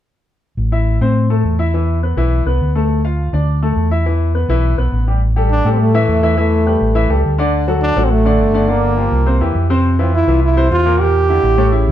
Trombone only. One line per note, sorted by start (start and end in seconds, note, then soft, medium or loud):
5.50 5.71 D4 loud
5.72 5.81 C4 medium
5.80 6.37 A3 medium
6.38 7.21 A3 medium
7.82 8.06 D4 loud
8.04 8.13 C4 medium
8.12 8.70 A3 medium
8.69 9.56 A#3 medium
10.00 10.13 C4 medium
10.15 10.41 E4 medium
10.43 10.70 E4 medium
10.72 11.02 F4 loud
11.00 11.92 G4 loud